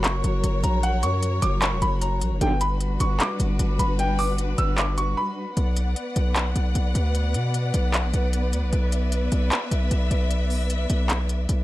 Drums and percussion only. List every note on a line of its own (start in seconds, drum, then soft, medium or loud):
0.04 clap loud
0.04 closed hi-hat medium
0.24 closed hi-hat medium
0.44 closed hi-hat medium
0.64 closed hi-hat medium
0.83 closed hi-hat medium
1.03 closed hi-hat medium
1.23 closed hi-hat medium
1.42 closed hi-hat medium
1.62 clap loud
1.62 closed hi-hat medium
1.82 closed hi-hat medium
2.02 closed hi-hat medium
2.21 closed hi-hat medium
2.41 closed hi-hat medium
2.61 closed hi-hat medium
2.81 closed hi-hat medium
3.00 closed hi-hat medium
3.20 clap loud
3.20 closed hi-hat medium
3.40 closed hi-hat medium
3.59 closed hi-hat medium
3.79 closed hi-hat medium
3.99 closed hi-hat medium
4.19 open hi-hat medium
4.38 closed hi-hat medium
4.58 closed hi-hat medium
4.78 clap loud
4.78 closed hi-hat medium
4.98 closed hi-hat medium
5.57 closed hi-hat medium
5.77 closed hi-hat medium
5.96 closed hi-hat medium
6.16 closed hi-hat medium
6.36 clap loud
6.36 closed hi-hat medium
6.56 closed hi-hat medium
6.75 closed hi-hat medium
6.95 closed hi-hat medium
7.15 closed hi-hat medium
7.34 closed hi-hat medium
7.54 closed hi-hat medium
7.74 closed hi-hat medium
7.94 clap loud
7.94 closed hi-hat medium
8.14 closed hi-hat medium
8.33 closed hi-hat medium
8.53 closed hi-hat medium
8.73 closed hi-hat medium
8.92 closed hi-hat medium
9.12 closed hi-hat medium
9.32 closed hi-hat medium
9.52 clap loud
9.52 closed hi-hat medium
9.71 closed hi-hat medium
9.91 closed hi-hat medium
10.11 closed hi-hat medium
10.31 closed hi-hat medium
10.50 open hi-hat medium
10.70 closed hi-hat medium
10.90 closed hi-hat medium
11.10 clap loud
11.10 closed hi-hat medium
11.29 closed hi-hat medium
11.49 closed hi-hat medium